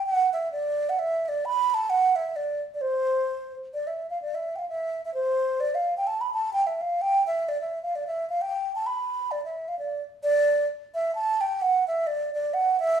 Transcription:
0.06 F#5
0.33 E5
0.52 D5
0.89 F#5
0.99 E5
1.25 D5 E5
1.45 B5
1.70 B5
1.74 A5
1.90 F#5
2.16 E5
2.36 D5
2.74 D5
2.81 C5
3.74 D5
3.87 E5
4.10 F5
4.22 D5
4.35 E5
4.56 F5 G5
4.69 E5
5.05 E5
5.14 C5
5.60 D5
5.75 F5
5.97 G5
6.07 A5
6.21 B5
6.34 A5
6.53 G5
6.67 E5
6.81 F5
7.01 G5
7.27 E5
7.48 D5
7.61 E5
7.83 F5
7.95 D5
8.07 E5
8.29 F5
8.41 G5
8.75 A5
8.86 B5
9.31 D5
9.45 E5
9.68 F5
9.79 D5
10.23 D5
10.94 E5
11.15 A5
11.41 G5
11.62 F#5
11.87 E5
12.07 D5
12.35 D5
12.54 F#5
12.80 E5

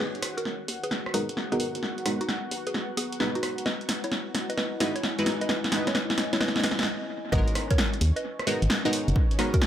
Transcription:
Already playing: G#3 B3 D#4 F#4 G#4 C#5 G#5
0.00 G#1 F#4 G#4 B4 F#5, snare
0.15 closed hi-hat
0.22 cross-stick, open hi-hat
0.37 F#4 A#4, closed hi-hat
0.43 B4, snare
0.68 D#2, open hi-hat
0.84 G#4 B4, closed hi-hat
0.91 snare
1.06 cross-stick
1.14 G#3 B3 D#4 F#4 G#4 A#4 B4, open hi-hat
1.29 G#1, closed hi-hat
1.37 snare
1.52 G#3 B3 D#4 F#4 G#4 A#4 B4, closed hi-hat
1.60 open hi-hat
1.66 A#5
1.75 F#1, closed hi-hat
1.83 snare
1.98 closed hi-hat
2.06 G#3 B3 D#4 F#4 A#4, cross-stick, open hi-hat
2.21 D#4 F#4, closed hi-hat
2.29 snare
2.51 D#2, open hi-hat
2.67 G#4 B4, closed hi-hat
2.74 G#2, snare
2.97 D#2 B3 G#4, open hi-hat
3.12 closed hi-hat
3.20 G#3 B3 D#4 F#4 B4, snare
3.35 D#4 F#4, closed hi-hat
3.43 G#1, cross-stick, open hi-hat
3.58 closed hi-hat
3.66 E1 E4 B4 D#5, snare
3.81 closed hi-hat
3.89 snare, open hi-hat
4.04 E4 C#5, closed hi-hat
4.12 G#5, snare
4.35 B1, snare, open hi-hat
4.43 D#5
4.50 B4 D#5, closed hi-hat
4.57 B4 D#5, snare
4.80 G#3 D#4 E4 F#4 B4, snare, open hi-hat
4.96 E1 E4 C#5, closed hi-hat
5.03 snare
5.19 G#3 D#4 E4 F#4 B4, closed hi-hat
5.26 snare, open hi-hat
5.41 B1 B4 D#5, closed hi-hat
5.49 B4 D#5, snare
5.64 snare, closed hi-hat
5.72 G#3 D#4 E4 F#4 B4, snare, open hi-hat
5.87 E4 C#5, snare, closed hi-hat
5.95 B4 D#5, snare
6.10 snare
6.18 B1, snare, open hi-hat
6.33 E4 C#5, snare, closed hi-hat
6.40 B4 D#5, snare
6.48 snare
6.56 snare
6.60 snare
6.64 B4 D#5, snare, open hi-hat
6.71 snare
6.79 snare, closed hi-hat
6.83 snare
7.32 G#1 G#3 B3 C#4 D#4 F#4 A#4 B4 C#5 D#5, kick
7.48 closed hi-hat
7.55 cross-stick, open hi-hat
7.71 A#4 C#5, kick, closed hi-hat
7.78 snare
7.94 closed hi-hat
8.01 D#2, open hi-hat
8.16 B4 D#5, closed hi-hat
8.39 cross-stick, closed hi-hat
8.47 G#3 B3 D#4 F#4 A#4 B4 D#5, open hi-hat
8.62 G#1, closed hi-hat
8.70 snare
8.85 G#3 B3 D#4 F#4 A#4 B4 D#5, closed hi-hat
8.93 open hi-hat
9.08 F#1, closed hi-hat
9.16 kick
9.31 closed hi-hat
9.39 G#3 B3 D#4 F#4 A#4, cross-stick, open hi-hat
9.54 F#4 A#4, kick, closed hi-hat
9.62 snare

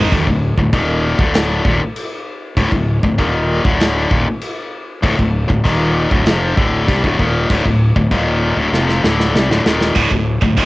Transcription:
Already playing: G#1 G#2 D#3 G#3
0.12 D1 D2 A2, kick, china
0.27 D1 D2 A2, kick
0.57 D1 D2 A2, kick
0.73 D#1 D#2 A#2 D#3, kick, china
1.19 D1 D2 A2 D3, kick
1.34 snare, china
1.65 D#1 D#2 A#2, kick
1.96 china
2.57 D1 D2 A2, kick, china
2.72 D1 D2 A2, kick
3.03 D1 D2 A2, kick
3.18 D#1 D#2 A#2 D#3, kick, china
3.65 D1 D2 A2 D3, kick
3.80 snare, china
4.10 D#1 D#2 A#2, kick
4.41 china
5.02 D1 D2 A2, kick, china
5.17 D1 D2 A2, kick
5.48 D1 D2 A2, kick
5.64 D#1 D#2 A#2 D#3, kick, china
6.10 D1 D2 A2, kick
6.26 F1 F2 C3 F3, snare, china
6.57 D1 D2 A2 D3, kick
6.88 C2 C3 G3, kick, china
7.04 D1 D2 A2, kick
7.19 D#1 D#2 A#2 D#3, kick
7.50 D1 D2 A2, kick, china
7.66 D1 D2 A2, kick
7.96 D1 D2 A2, kick
8.11 D#1 D#2 A#2 D#3, kick, china
8.57 D1 D2 A2
8.73 F1 F2 C3 F3, snare
8.89 snare
9.03 D1 D2 A2 D3, snare
9.20 snare
9.34 C2 C3 G3, snare
9.49 D1 D2 A2, snare
9.66 D#1 D#2 A#2 D#3, snare
9.81 snare
9.96 D1 D2 A2, kick, china
10.11 D1 D2 A2, kick
10.42 D1 D2 A2, kick
10.57 D#1 D#2 A#2 D#3, kick, china

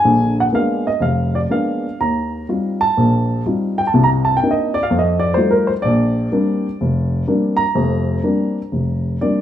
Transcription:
Already playing: G#5
0.05 A#1 D3
0.40 F#5
0.52 G#3 A#3 B3 D4 F5
0.87 D#5
1.00 F1 F5
1.35 D5
1.50 G#3 A#3 B3 D4 F5
2.00 D#2 A#5
2.49 G3 C4 D#4 F4
2.81 A5
2.97 A#1 A#2
3.46 G3 C4 D#4 F4
3.78 G5
3.87 A5
3.94 C2 C3
4.04 A#5
4.25 A5
4.37 G5
4.43 A#3 C4 D4 D#4
4.51 D#5
4.74 D5
4.83 F5
4.90 F2
4.99 D#5
5.20 D5
5.34 G3 A3 D#4 F4 C5
5.51 A#4
5.67 C5
5.82 A#1 D5
6.32 G3 A#3 C4 D4
6.81 F1
7.28 G3 A#3 C4 D4
7.57 A#5
7.75 F1 F2
8.23 G3 A#3 C4 D4
8.72 F1
9.21 G3 A#3 C4 D4 D5

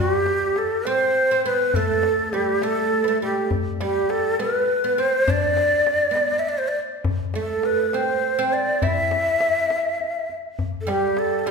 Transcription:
Already playing: G3
0.00 F#4
0.13 G4
0.26 tombak tek
0.56 A4, tombak tek
0.85 C4 C5, tombak tek
1.15 tombak ka
1.31 C4
1.45 B3 B4, tombak ka
1.74 A3 A4, tombak dum
2.03 tombak tek
2.33 G3 G4, tombak tek
2.62 A3 A4, tombak tek
2.92 tombak ka
3.04 A3 B3
3.22 G3 G4, tombak ka
3.51 tombak dum
3.81 G3 G4, tombak tek
4.10 A4, tombak tek
4.39 B3 B4, tombak tek
4.69 tombak ka
4.84 B3
4.98 C4 C5, tombak ka
5.27 D4 D5, tombak dum
5.57 tombak tek
5.87 tombak tek
6.11 B3
6.16 tombak tek
6.39 E5
6.46 D5, tombak ka
6.58 C5
6.68 D5
7.04 tombak dum
7.34 A3 A4, tombak tek
7.63 B4, tombak tek
7.93 C4 C5, tombak tek
8.23 tombak ka
8.39 C4
8.53 D5, tombak ka
8.82 E4 E5, tombak dum
9.11 tombak tek
9.40 tombak tek
9.70 tombak tek
10.00 tombak ka
10.29 tombak ka
10.59 tombak dum
10.81 A4
10.87 G3 G4, tombak tek
11.17 A4, tombak tek
11.39 A4
11.46 G3, tombak tek

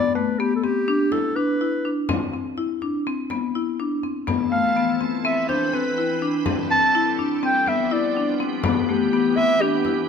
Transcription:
Already playing: D5
0.15 A3 B4
0.39 B3 G4
0.56 A4
0.63 C4 G4, frame drum
0.88 D4
1.12 E4 A4, frame drum
1.36 D4 B4
1.61 E4
1.85 D4
2.09 C4, frame drum
2.33 C4, frame drum
2.57 E4, frame drum
2.81 D4, frame drum
3.07 C4
3.30 B3, frame drum
3.55 E4
3.80 D4
4.03 C4, frame drum
4.27 E3 F3 B3 A4, frame drum
4.52 A3 F5
4.76 B3
5.01 C4, frame drum
5.23 E3 C4 B4 E5
5.49 D4 C5, frame drum
5.73 C4 B4
5.98 E4
6.22 D4
6.45 G3 C4 A4, frame drum
6.71 C4 A5
6.95 E4
7.19 D4, frame drum
7.42 F3 B3 C4 G4 G5
7.66 B3 E5, frame drum
7.91 E4 D5
8.17 D4
8.40 C4
8.63 E3 B3, frame drum
8.88 A3 G4
9.13 B3
9.36 C4 E5, frame drum
9.61 D4 G4
9.85 E4, frame drum

